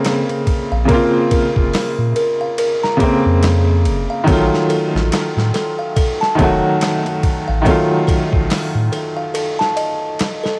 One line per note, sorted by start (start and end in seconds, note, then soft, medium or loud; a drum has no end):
0.00 0.83 C#3 medium
0.00 0.84 A#3 medium
0.00 0.86 C4 medium
0.00 0.45 A4 medium
0.05 snare loud
0.05 ride medium
0.29 ride soft
0.47 kick medium
0.47 ride medium
0.72 0.87 A#1 loud
0.72 0.88 F5 medium
0.85 2.94 C#3 medium
0.85 2.96 A#3 medium
0.85 kick loud
0.85 ride medium
0.89 2.97 C4 medium
0.89 1.13 A#4 medium
0.94 2.98 F4 medium
1.31 2.14 A#4 loud
1.31 kick medium
1.31 ride medium
1.56 1.72 F1 loud
1.56 kick medium
1.73 snare loud
1.73 open hi-hat medium
1.98 2.14 A#2 loud
2.16 2.38 A#4 medium
2.16 ride medium
2.41 2.57 F5 medium
2.58 2.82 A#4 loud
2.58 ride medium
2.83 2.99 A#5 loud
2.83 snare soft
2.97 4.21 C#3 medium
2.97 4.23 A#3 medium
2.97 3.83 A4 medium
2.97 kick medium
2.97 ride medium
3.03 4.24 C4 medium
3.26 3.87 F2 medium
3.43 snare loud
3.43 ride medium
3.85 4.07 F1 loud
3.85 ride medium
4.10 4.26 F5 loud
4.24 4.49 A1 loud
4.24 6.32 D#3 medium
4.24 6.34 F#3 medium
4.24 4.51 A4 medium
4.24 kick loud
4.24 ride medium
4.29 6.35 A3 medium
4.29 6.37 F4 medium
4.54 snare soft
4.69 5.52 A4 loud
4.69 ride medium
4.95 5.10 A1 loud
4.95 snare soft
5.12 snare loud
5.12 ride medium
5.37 5.52 A2 loud
5.37 snare soft
5.54 5.76 A4 medium
5.54 snare soft
5.54 ride medium
5.79 5.95 F5 loud
5.96 6.20 A4 loud
5.96 kick loud
5.96 ride medium
6.21 6.37 A5 loud
6.21 snare soft
6.35 6.61 F1 medium
6.35 7.59 D#3 medium
6.35 7.61 F#3 medium
6.35 7.21 A4 medium
6.35 kick medium
6.35 ride medium
6.41 7.62 A3 medium
6.41 7.64 F#4 medium
6.81 snare loud
6.81 ride medium
7.06 ride soft
7.23 kick medium
7.23 ride medium
7.48 7.63 A1 medium
7.48 7.64 F5 loud
7.62 9.70 D#3 medium
7.62 9.72 F#3 medium
7.62 7.89 A4 loud
7.66 9.73 A3 medium
7.66 kick loud
7.66 ride medium
7.70 9.75 F4 medium
8.07 8.90 A4 loud
8.07 kick medium
8.07 ride medium
8.33 8.48 A1 loud
8.33 kick medium
8.50 snare loud
8.50 open hi-hat medium
8.75 8.90 A2 loud
8.92 9.14 A4 medium
8.92 ride medium
9.17 9.33 F5 medium
9.34 9.58 A4 loud
9.34 ride medium
9.59 9.75 A5 loud
9.59 snare soft
9.76 9.91 D#5 medium
9.76 ride medium
10.19 snare medium
10.19 ride medium
10.44 10.59 A4 medium
10.44 snare soft